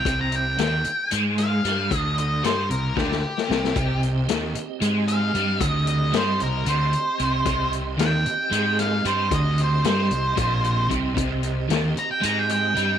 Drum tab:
HH |x-x-x-x-x-x-x-|x-x-x-x-------|x-x-x-x-x-x-x-|x-x-x-x-x-x-x-|
SD |----o-----o-o-|----o---oo-ooo|----o---------|----o---------|
BD |o-------------|o-------o-----|o-------------|o-------------|

HH |x-x-x-x-x-x-x-|x-x-x-x-x-x-x-|x-x-x-x-x-x-x-|
SD |----o-----o---|----o---------|----o---------|
BD |o-------------|o-------o---o-|o-------------|